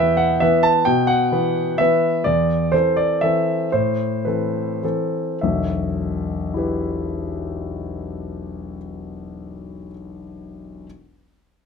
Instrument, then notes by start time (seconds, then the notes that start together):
grand piano
Already playing: E2 E3 B3 E5 G5
0.00 B4
0.17 F#5
0.40 E3 B3 B4 E5
0.63 A5
0.85 B2 G5
1.07 F#5
1.32 E3 B3 B4
1.78 E3 B3 B4 E5
2.24 E2 D5
2.72 E3 C4 A4 C5
2.97 D5
3.21 E3 C4 A4 E5
3.72 A2 C5
4.25 E3 C4 A4 B4
4.83 E3 C4 A4
5.41 E1 B1 E5
6.54 E4 G4
6.58 B4